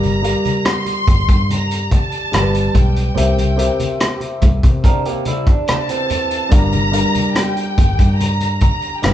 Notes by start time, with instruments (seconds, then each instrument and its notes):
Already playing: fingered electric bass G1, grand piano G3 G4 A#4 F5, violin section A#5
0.03 closed hi-hat, high conga
0.22 grand piano G3 G4 A#4 F5, closed hi-hat
0.45 closed hi-hat, high conga
0.65 violin section C6, cross-stick, closed hi-hat, muted conga
0.86 closed hi-hat, muted conga
1.07 fingered electric bass G1, kick, closed hi-hat, low conga
1.29 fingered electric bass G2, kick, closed hi-hat
1.50 violin section A#5, closed hi-hat, muted conga, high conga
1.71 closed hi-hat
1.91 violin section A5, kick, closed hi-hat, high conga
2.12 closed hi-hat
2.32 fingered electric bass G1, grand piano G3 G4 A#4 F5, cross-stick, closed hi-hat, muted conga, high conga
2.40 grand piano B4
2.55 closed hi-hat
2.74 fingered electric bass B1, violin section G5, kick, closed hi-hat, low conga
2.96 closed hi-hat
3.14 fingered electric bass C2, grand piano C4 G4 A#4 E5, closed hi-hat, low conga
3.38 closed hi-hat, high conga
3.56 grand piano C4 G4 A#4 E5, closed hi-hat
3.79 closed hi-hat, high conga
3.99 cross-stick, closed hi-hat, muted conga
4.20 closed hi-hat, muted conga
4.42 fingered electric bass C2, kick, cross-stick, closed hi-hat, low conga
4.63 fingered electric bass C3, kick, closed hi-hat
4.84 clean electric guitar D4 A#4, kick, closed hi-hat, muted conga, high conga
5.05 clean electric guitar A#3 G4, closed hi-hat
5.25 clean electric guitar G3 E4, closed hi-hat, high conga
5.46 clean electric guitar D4, kick, closed hi-hat
5.68 violin section A5, cross-stick, closed hi-hat, muted conga, high conga
5.89 clean electric guitar E3 C4, closed hi-hat, muted conga
6.10 closed hi-hat, low conga
6.31 closed hi-hat
6.49 fingered electric bass G1, grand piano G3 D4 A#4 F5, violin section A#5, kick, closed hi-hat, muted conga, low conga
6.72 closed hi-hat, muted conga, high conga
6.92 grand piano G3 D4 A#4 F5, closed hi-hat
7.14 closed hi-hat, high conga
7.35 violin section G5, cross-stick, closed hi-hat, muted conga
7.57 closed hi-hat
7.78 fingered electric bass G1, kick, cross-stick, closed hi-hat, low conga
7.99 fingered electric bass G2, kick, closed hi-hat
8.18 violin section A#5, closed hi-hat, muted conga, high conga
8.40 closed hi-hat, muted conga
8.59 violin section A#5, kick, closed hi-hat, high conga
8.81 closed hi-hat
9.01 fingered electric bass G1, grand piano G3 D4 B4 F5, violin section G5, cross-stick, closed hi-hat, muted conga, high conga